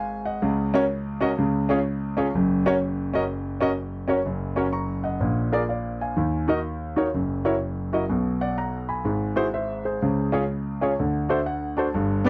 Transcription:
Already playing: G#1 G#2 F5 G#5
0.26 D#5 F#5
0.42 C#2 C#3
0.74 C#4 F#4 A#4 C#5
1.21 C#4 F#4 A#4 D#5
1.38 C#2 C#3
1.69 C#4 F4 G#4 C#5
2.17 C#4 F4 G#4 C#5
2.35 F#1 F#2
2.66 C#4 F#4 A#4 C#5
3.14 C#4 F#4 A#4 D#5
3.61 C#4 F#4 A#4 D#5
4.08 C#4 F#4 A#4 C#5
4.25 F#1 F#2
4.56 C#4 F#4 A#4 C#5
4.73 A#5 C#6
5.04 D#5 F#5
5.20 A#1 A#2
5.52 F4 G#4 A#4 D5
5.69 D5 F5
6.01 F5 G#5
6.17 D#2 D#3
6.48 D#4 F#4 A#4 D#5
6.96 D#4 F#4 A#4 C#5
7.14 F#1 F#2
7.45 E4 F#4 A#4 C#5
7.93 E4 F#4 A#4 D#5
8.10 B1 B2
8.41 D5 F#5
8.58 F#5 A#5
8.89 G#5 B5
9.05 G#1 G#2
9.36 E4 F#4 G#4 C5
9.54 C5 E5
9.85 G#4 C5
10.02 C#2 C#3
10.32 C#4 F4 G#4 C#5
10.81 C#4 F4 G#4 C#5
10.99 D2 D3
11.29 D4 F#4 A4 C5 E5
11.46 F#5
11.77 D4 F#4 A4 C5 A5
11.94 G1 G2
12.25 B3 D4 G4 B4

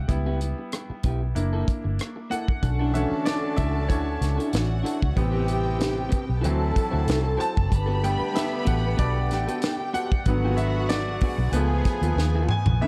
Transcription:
Already playing: F5
0.08 C#2 G3 B3 E4, muted clean electric guitar stroke, kick, closed hi-hat
0.26 B3 E4 G4
0.41 muted clean electric guitar stroke, closed hi-hat
0.58 muted clean electric guitar stroke
0.72 muted clean electric guitar stroke, cross-stick, closed hi-hat
0.90 muted fingered electric bass stroke, muted clean electric guitar stroke
1.03 B1 B3 E4 G4, kick, closed hi-hat
1.23 muted clean electric guitar stroke
1.35 F#1 A#3 D4 E4, muted clean electric guitar stroke, closed hi-hat
1.53 A#3 E4 A4
1.68 muted fingered electric bass stroke, kick, cross-stick, closed hi-hat
1.84 G1, muted clean electric guitar stroke
1.99 cross-stick, closed hi-hat
2.16 muted clean electric guitar stroke
2.30 A#3 E4 A4 F#5, closed hi-hat
2.48 muted clean electric guitar stroke, kick
2.62 B1 C#4 D4 F#4 A4 A5, muted clean electric guitar stroke, kick, closed hi-hat
2.79 D4 E4 A4
2.93 D3 E3 A3 C#4 E5, muted clean electric guitar stroke, closed hi-hat
3.11 muted clean electric guitar stroke, muted fingered electric bass stroke
3.25 D5, muted clean electric guitar stroke, snare, closed hi-hat
3.42 muted clean electric guitar stroke
3.56 C#2 D4 E4 A4 E5, kick, closed hi-hat
3.74 muted clean electric guitar stroke
3.88 D2 D4 E4 A4 C#5, kick, closed hi-hat
4.20 C#2, muted clean electric guitar stroke, snare, closed hi-hat
4.37 D4 E4 A4, closed hi-hat
4.53 A1 F#4 F#5, snare, closed hi-hat
4.69 muted clean electric guitar stroke
4.83 D4 E4 A4, closed hi-hat
5.01 C#2, muted clean electric guitar stroke, kick
5.16 A1 C3 E3 G3 B3 C4 G4 G5, muted clean electric guitar stroke, kick, closed hi-hat
5.32 C4 G4 B4
5.47 muted clean electric guitar stroke, closed hi-hat
5.64 muted clean electric guitar stroke
5.79 muted clean electric guitar stroke, snare, closed hi-hat
5.96 muted clean electric guitar stroke
6.09 C4 G4 B4, muted fingered electric bass stroke, kick, closed hi-hat
6.27 B1, muted clean electric guitar stroke
6.41 D2 E3 F#3 E4 F#4 A4 C5 A5, closed hi-hat
6.46 C4
6.74 muted clean electric guitar stroke, muted fingered electric bass stroke, kick, closed hi-hat
6.91 D2 E4 F#4 C5
7.08 C2, snare, closed hi-hat
7.23 muted clean electric guitar stroke
7.37 E4 F#4 C5 A5, closed hi-hat
7.55 F#1, muted clean electric guitar stroke, kick
7.70 G1 D3 B3 G4 B4 B5, muted clean electric guitar stroke, kick, closed hi-hat
7.86 B3 F#4 A4
8.03 G3 A3 B3 G5, muted clean electric guitar stroke, closed hi-hat
8.19 muted clean electric guitar stroke, muted fingered electric bass stroke
8.34 E5, muted clean electric guitar stroke, snare, closed hi-hat
8.51 muted clean electric guitar stroke
8.65 A1 B3 F#4 A4 F#5, kick, closed hi-hat
8.82 muted clean electric guitar stroke
8.97 B1 B3 F#4 A4 D5, kick, closed hi-hat
9.29 A1 G4 G5, muted clean electric guitar stroke, snare, closed hi-hat
9.47 B3 F#4 A4, closed hi-hat
9.62 snare, closed hi-hat
9.80 muted clean electric guitar stroke
9.94 B3 F#4 A4 F#5, closed hi-hat
10.12 muted clean electric guitar stroke, kick
10.25 G#1 D3 F#3 B3 F#4 F#5, muted clean electric guitar stroke, kick, closed hi-hat
10.45 B3 F#4 G#4
10.57 E5, muted clean electric guitar stroke, closed hi-hat
10.76 muted clean electric guitar stroke
10.89 D5, muted clean electric guitar stroke, snare, closed hi-hat
11.08 muted clean electric guitar stroke
11.21 B3 F#4 G#4, muted fingered electric bass stroke, kick, open hi-hat
11.38 B1, muted clean electric guitar stroke
11.52 C#2 F3 A3 B3 F4 G#4 A4 B4 G#5, closed hi-hat
11.85 muted clean electric guitar stroke, kick, snare, closed hi-hat
12.01 D#2 B3 F4 A4, closed hi-hat
12.16 D#2, muted clean electric guitar stroke, snare
12.35 B3 F4 A4
12.49 G#5, muted clean electric guitar stroke, mid tom
12.66 A#1, muted clean electric guitar stroke, floor tom
12.81 C#3 D3 E3 A3 E5, muted clean electric guitar stroke

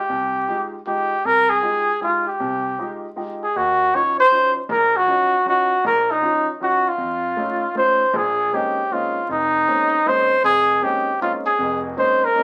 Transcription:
Already playing: G4
0.09 C2
0.48 G#3 D#4 F4 G4
0.87 G#3 D#4 F4 G4
1.25 C2 A#4
1.49 G#4
1.62 G#3 D#4 F4 G4
2.01 G#3 D#4 F4 G4
2.27 G4
2.40 C2 C3
2.79 G#3 D#4 F4 G4
3.16 G#3 D#4 F4 G4
3.43 G#4
3.56 D#2 F#4
3.93 F#3 C#4 D#4 F4 C#5
4.20 C5
4.31 F#3 C#4 D#4 F4
4.69 A#1 A#4
4.96 F#4
5.07 F#3 C#4 D#4 F4
5.45 F#3 C#4 D#4 F4 F#4
5.85 A#1 A#4
6.11 D#4
6.22 F#3 C#4 D#4 F4
6.60 F#3 C#4 D#4 F4 F#4
6.88 F4
6.98 F2
7.37 A3 C#4 D#4 F4
7.75 A3 C#4 D#4 F4 C5
8.14 A#1 G#4
8.52 G#3 A#3 C4 C#4 D#4 G4
8.91 G#3 A#3 C4 C#4 D#4 F4
9.29 F1 D#4
9.67 G#3 A#3 C4 C#4 D#4
10.06 G#3 A#3 C4 C#4 D#4 C5
10.44 F1 G#4
10.82 G#3 A#3 C4 C#4 D#4 G4
11.20 G#3 A#3 C4 C#4 D#4 F4
11.46 G#4
11.59 F1 F2
11.96 G#3 A#3 C4 C#4 D#4 C5
12.24 A#4
12.35 G#3 A#3 C4 C#4 D#4

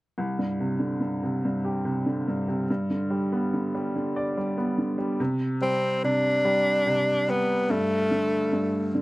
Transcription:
0.18 C2
0.39 G2
0.60 C3
0.79 D3
1.00 G2
1.23 C3
1.45 G2
1.65 G4
1.85 C3
2.06 D3
2.28 G2
2.48 C3
2.70 G2
2.90 D3
3.10 G3
3.32 B3
3.54 D3
3.75 G3
3.95 D3
4.16 D5
4.37 G3
4.58 B3
4.78 D3
4.98 G3
5.20 C3
5.62 G3 C4
6.03 C3 D4
6.45 G3
6.86 C3
7.28 G3 B3
7.70 G2 A3
8.11 D3
8.52 G2
8.95 D3

